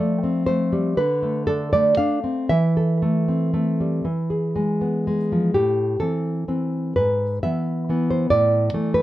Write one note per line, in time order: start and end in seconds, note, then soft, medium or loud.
0.00 0.93 F3 medium
0.00 0.46 A3 medium
0.00 0.97 A4 medium
0.00 0.43 D5 loud
0.23 0.97 C4 medium
0.46 0.97 A3 medium
0.46 0.95 C5 medium
0.72 0.97 G3 medium
0.97 1.98 D3 medium
0.97 1.45 B4 medium
1.22 1.72 A3 medium
1.47 1.97 D4 medium
1.47 1.72 A4 medium
1.73 2.50 A3 soft
1.73 1.97 D5 medium
1.97 2.23 D4 medium
1.97 2.47 F5 medium
2.24 2.50 C4 soft
2.49 4.01 E3 medium
2.49 5.03 E5 medium
2.77 4.05 A4 medium
3.02 3.52 A3 soft
3.28 4.05 C4 soft
3.54 4.05 A3 soft
3.80 4.05 G3 soft
4.05 5.51 E3 medium
4.30 5.55 G#4 soft
4.56 5.06 G#3 soft
4.81 5.54 B3 soft
5.07 5.55 G#3 soft
5.32 5.55 F3 soft
5.54 5.99 A2 medium
5.54 5.98 G4 medium
6.00 6.47 E3 soft
6.00 6.47 C4 soft
6.00 6.92 A4 medium
6.48 6.93 E3 soft
6.48 6.93 C4 soft
6.96 7.42 G#2 medium
6.96 7.42 B4 medium
7.43 7.88 E3 soft
7.43 7.88 B3 soft
7.43 8.07 E5 medium
7.89 8.28 E3 soft
7.89 8.28 B3 soft
8.10 8.30 C5 medium
8.30 8.72 A2 medium
8.30 8.92 D5 medium
8.73 9.02 E3 soft
8.73 9.02 A3 soft
8.94 9.02 B4 medium